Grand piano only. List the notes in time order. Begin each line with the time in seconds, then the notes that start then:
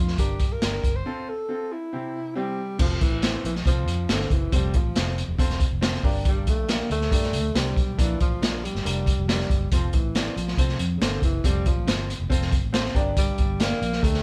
0.18 G2 D4 G4 A#4
0.62 D4 G4 A#4
1.06 C4 F4 A4
1.49 C4 F4 A4
1.93 C3 C4 E4 G4
2.35 C4 E4 G4
2.78 C4 F4 A4 C5
3.22 C4 F4 A4 C5
3.67 C4 F4 A4 C5
4.09 C4 F4 A4 C5
4.52 C4 F4 A4 C5
4.95 C4 F4 A4 C5
5.38 C4 F4 A4 C5
5.81 C4 F4 A4 C5
6.04 G2 D4 G4 A#4 D5
6.68 D4 G4 A#4 E5
7.11 D4 G4 A#4 D5
7.54 D4 G4 A#4 C5
7.98 A#2 D4 F4 A#4 D5
8.41 D4 F4 A#4 E5
8.84 D4 F4 A#4 D5
9.28 D4 F4 A#4 D5
9.71 C4 F4 A4 C5
10.15 C4 F4 A4 D5
10.58 C4 F4 A4 C5
11.01 C4 F4 A4 C5
11.44 C4 F4 A4 D5
11.87 C4 F4 A4 C5
12.30 C4 F4 A4 C5
12.72 C4 F4 A4 C5
12.95 G2 D4 G4 A#4 D5
13.59 D4 G4 A#4 D5
14.02 D4 G4 A#4 E5